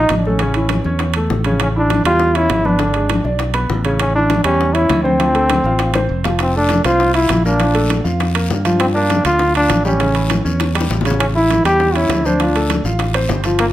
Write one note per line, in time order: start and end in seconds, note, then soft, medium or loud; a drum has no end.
0.00 0.17 D#4 medium
0.00 0.20 D#4 medium
0.00 0.20 D#5 medium
0.09 0.79 A1 medium
0.09 high bongo medium
0.09 low bongo medium
0.09 high conga medium
0.09 high timbale medium
0.17 0.29 D4 medium
0.25 0.38 A3 medium
0.25 0.86 C#4 medium
0.25 0.38 A4 medium
0.25 high bongo soft
0.25 high conga medium
0.39 0.53 C#3 medium
0.39 0.53 C#4 medium
0.39 high bongo medium
0.39 high conga soft
0.39 high timbale medium
0.54 0.80 E3 medium
0.54 0.80 E4 medium
0.54 high conga soft
0.54 high timbale medium
0.69 high bongo medium
0.69 high conga medium
0.69 high timbale medium
0.84 1.27 E2 medium
0.84 1.10 C#4 medium
0.84 1.10 C#5 medium
0.84 high bongo soft
0.84 high conga soft
0.99 high bongo medium
0.99 high conga soft
0.99 high timbale medium
1.14 1.40 A3 medium
1.14 1.40 A4 medium
1.14 high bongo soft
1.14 high conga soft
1.14 high timbale medium
1.30 1.99 A1 medium
1.30 high bongo medium
1.30 low bongo medium
1.30 high conga soft
1.44 1.70 C#3 medium
1.44 1.70 C#4 medium
1.44 high bongo soft
1.44 high conga medium
1.44 high timbale medium
1.60 1.69 C#4 medium
1.60 high bongo medium
1.60 high conga soft
1.60 high timbale medium
1.76 2.00 E3 medium
1.76 2.04 D4 medium
1.76 2.00 E4 medium
1.76 high conga soft
1.90 high bongo medium
1.90 high conga medium
1.90 high timbale medium
2.04 2.46 E2 medium
2.04 2.30 G3 medium
2.04 2.38 F4 medium
2.04 2.30 G4 medium
2.04 high bongo soft
2.04 high timbale medium
2.20 high bongo medium
2.20 high conga soft
2.35 2.60 C#4 medium
2.35 2.67 E4 loud
2.35 2.60 C#5 medium
2.35 high bongo soft
2.35 high conga soft
2.35 high timbale medium
2.49 3.19 G#1 medium
2.49 high bongo medium
2.49 low bongo medium
2.49 high conga medium
2.49 high timbale medium
2.49 low timbale medium
2.65 2.77 B3 medium
2.65 3.25 D4 medium
2.65 2.77 B4 medium
2.65 high bongo soft
2.65 high conga medium
2.79 2.92 D3 medium
2.79 2.92 D4 medium
2.79 high bongo medium
2.79 high conga soft
2.79 high timbale medium
2.94 3.20 G#3 medium
2.94 3.20 G#4 medium
2.94 high timbale medium
3.09 high bongo medium
3.09 high conga medium
3.09 high timbale medium
3.24 3.66 B1 medium
3.24 3.49 D4 medium
3.24 3.49 D5 medium
3.24 high bongo soft
3.24 high conga soft
3.39 high bongo medium
3.39 high conga soft
3.39 high timbale medium
3.54 3.79 B3 medium
3.54 3.79 B4 medium
3.54 high bongo soft
3.54 high conga soft
3.54 high timbale medium
3.69 4.39 A1 medium
3.69 high bongo medium
3.69 low bongo medium
3.69 high conga soft
3.85 4.09 C#3 medium
3.85 4.10 C#4 medium
3.85 high bongo soft
3.85 high timbale medium
3.99 4.14 C#4 medium
3.99 high bongo medium
3.99 high conga soft
3.99 high timbale medium
4.16 4.40 E3 medium
4.16 4.43 D4 medium
4.16 4.40 E4 medium
4.16 high conga soft
4.30 high bongo medium
4.30 high conga medium
4.30 high timbale medium
4.44 4.86 E2 medium
4.44 4.69 G3 medium
4.44 4.75 C#4 medium
4.44 4.70 G4 medium
4.44 high timbale medium
4.60 high bongo medium
4.60 high conga soft
4.74 4.99 C#4 medium
4.74 5.03 E4 loud
4.74 4.99 C#5 medium
4.74 high bongo soft
4.74 high conga soft
4.74 high timbale medium
4.89 5.59 D2 medium
4.89 high bongo medium
4.89 low bongo medium
4.89 high conga medium
4.89 high timbale medium
5.03 6.05 C4 medium
5.03 5.17 C4 medium
5.03 5.17 C5 medium
5.03 high bongo soft
5.03 high conga medium
5.19 5.32 F3 medium
5.19 5.32 F4 medium
5.19 high bongo medium
5.19 high conga soft
5.19 high timbale medium
5.34 5.59 A3 medium
5.34 5.60 A4 medium
5.34 high conga soft
5.34 high timbale medium
5.50 high bongo medium
5.50 high conga medium
5.50 high timbale medium
5.64 6.06 A1 medium
5.64 5.90 F4 medium
5.64 5.90 F5 medium
5.64 high bongo soft
5.64 high conga soft
5.79 high bongo medium
5.79 high conga soft
5.79 high timbale medium
5.94 6.20 C4 medium
5.94 6.20 C5 medium
5.94 high bongo medium
5.94 high conga soft
5.94 high timbale medium
6.09 6.79 F1 medium
6.09 high conga soft
6.24 6.49 F3 medium
6.24 6.49 F4 medium
6.24 low bongo medium
6.24 high timbale medium
6.39 6.55 C4 medium
6.39 high bongo medium
6.39 high conga soft
6.39 high timbale medium
6.39 long guiro medium
6.55 6.80 A3 medium
6.55 6.84 D4 medium
6.55 6.80 A4 medium
6.55 high conga soft
6.69 high bongo medium
6.69 high conga medium
6.69 high timbale medium
6.69 short guiro medium
6.84 7.26 C2 medium
6.84 7.10 C4 medium
6.84 7.13 F4 loud
6.84 7.10 C5 medium
6.84 high bongo soft
6.84 high timbale medium
6.84 short guiro medium
7.00 high bongo medium
7.00 high conga soft
7.00 long guiro medium
7.14 7.43 E4 medium
7.14 7.39 F4 medium
7.14 7.39 F5 medium
7.14 high bongo soft
7.14 high conga soft
7.14 high timbale medium
7.29 7.99 A#1 medium
7.29 high bongo medium
7.29 low bongo medium
7.29 high conga medium
7.29 high timbale medium
7.29 short guiro medium
7.45 7.58 A#3 medium
7.45 8.02 D4 medium
7.45 7.58 A#4 medium
7.45 high bongo soft
7.45 high conga medium
7.45 short guiro medium
7.59 7.72 F3 medium
7.59 7.72 F4 medium
7.59 high bongo medium
7.59 high conga soft
7.59 high timbale medium
7.59 long guiro medium
7.74 7.99 A3 medium
7.74 7.99 A4 medium
7.74 high conga soft
7.74 high timbale medium
7.90 high bongo soft
7.90 high conga medium
7.90 high timbale medium
7.90 short guiro medium
8.04 8.47 F2 medium
8.04 8.29 F4 medium
8.04 8.29 F5 medium
8.04 high bongo soft
8.04 high conga soft
8.04 short guiro medium
8.20 high bongo medium
8.20 high conga soft
8.20 high timbale medium
8.20 long guiro medium
8.35 8.59 A#3 medium
8.35 8.60 A#4 medium
8.35 high bongo soft
8.35 high conga soft
8.35 high timbale medium
8.50 9.19 G2 medium
8.50 high bongo medium
8.50 low bongo medium
8.50 high conga soft
8.50 short guiro medium
8.65 8.89 F3 medium
8.65 8.89 F4 medium
8.65 high bongo soft
8.65 high conga medium
8.65 high timbale medium
8.65 short guiro medium
8.80 8.87 C4 medium
8.80 high bongo medium
8.80 high conga soft
8.80 high timbale medium
8.80 long guiro medium
8.95 9.20 A#3 medium
8.95 9.23 D4 medium
8.95 9.20 A#4 medium
8.95 high conga soft
9.10 high bongo medium
9.10 high conga medium
9.10 high timbale medium
9.10 short guiro medium
9.25 9.67 D2 medium
9.25 9.50 D4 medium
9.25 9.53 F4 loud
9.25 9.50 D5 medium
9.25 high bongo soft
9.25 high timbale medium
9.25 short guiro medium
9.39 high bongo medium
9.39 high conga soft
9.39 long guiro medium
9.55 9.84 D4 medium
9.55 9.80 F4 medium
9.55 9.80 F5 medium
9.55 high bongo soft
9.55 high conga soft
9.55 high timbale medium
9.69 10.39 A1 loud
9.69 high bongo medium
9.69 low bongo medium
9.69 high conga medium
9.69 high timbale medium
9.69 short guiro medium
9.85 9.97 G3 medium
9.85 10.41 C#4 medium
9.85 9.97 G4 medium
9.85 high bongo soft
9.85 high conga medium
9.85 short guiro medium
9.99 10.12 C#3 medium
9.99 10.12 C#4 medium
9.99 high bongo medium
9.99 high conga soft
9.99 high timbale medium
9.99 long guiro medium
10.15 10.39 E3 medium
10.15 10.39 E4 medium
10.15 high conga soft
10.15 high timbale medium
10.30 high bongo medium
10.30 high conga medium
10.30 high timbale medium
10.30 short guiro medium
10.45 10.87 E2 medium
10.45 10.69 C#4 medium
10.45 10.69 C#5 medium
10.45 high bongo soft
10.45 high conga soft
10.45 short guiro medium
10.60 high bongo medium
10.60 high timbale medium
10.60 long guiro medium
10.75 10.99 G3 medium
10.75 11.00 G4 medium
10.75 high conga soft
10.75 high timbale medium
10.81 high bongo medium
10.90 11.59 A1 medium
10.90 low bongo medium
10.90 high conga soft
10.90 short guiro medium
11.01 low bongo medium
11.05 11.30 C#3 medium
11.05 11.30 C#4 medium
11.05 high timbale medium
11.05 short guiro medium
11.10 low bongo medium
11.20 11.27 C#4 medium
11.20 high bongo medium
11.20 high conga soft
11.20 high timbale medium
11.20 long guiro medium
11.35 11.60 E3 medium
11.35 11.60 E4 medium
11.35 11.63 E4 medium
11.35 high conga soft
11.50 high bongo medium
11.50 high conga medium
11.50 high timbale medium
11.50 short guiro medium
11.64 12.06 E2 medium
11.64 11.90 G3 medium
11.64 11.97 G4 loud
11.64 11.90 G4 medium
11.64 high bongo soft
11.64 high timbale medium
11.64 short guiro medium
11.80 high bongo medium
11.80 high conga soft
11.80 long guiro medium
11.95 12.20 C#4 medium
11.95 12.27 E4 medium
11.95 12.20 C#5 medium
11.95 high bongo soft
11.95 high conga soft
11.95 high timbale medium
12.09 12.79 D2 medium
12.09 high bongo medium
12.09 low bongo medium
12.09 high conga medium
12.09 high timbale medium
12.09 low timbale medium
12.09 short guiro medium
12.25 12.38 C4 medium
12.25 12.85 D4 medium
12.25 12.38 C5 medium
12.25 high bongo soft
12.25 high conga medium
12.25 short guiro medium
12.40 12.53 F3 medium
12.40 12.53 F4 medium
12.40 high bongo medium
12.40 high conga soft
12.40 high timbale medium
12.40 long guiro medium
12.54 12.80 A3 medium
12.54 12.80 A4 medium
12.54 high conga soft
12.54 high timbale medium
12.70 high bongo medium
12.70 high conga medium
12.70 high timbale medium
12.70 short guiro medium
12.84 13.26 A1 medium
12.84 13.09 F4 medium
12.84 13.09 F5 medium
12.84 high bongo soft
12.84 high conga soft
12.84 short guiro medium
12.99 high bongo medium
12.99 high conga soft
12.99 high timbale medium
12.99 long guiro medium
13.14 13.39 C4 medium
13.14 13.39 C5 medium
13.14 high bongo soft
13.14 high conga soft
13.14 high timbale medium
13.29 13.73 G1 loud
13.29 high bongo medium
13.29 low bongo medium
13.29 high conga soft
13.29 low timbale medium
13.29 short guiro medium
13.44 13.69 F3 medium
13.44 13.69 F4 medium
13.44 high bongo soft
13.44 high timbale medium
13.44 short guiro medium
13.59 13.66 A#3 medium
13.59 high bongo medium
13.59 high conga soft
13.59 high timbale medium
13.59 long guiro medium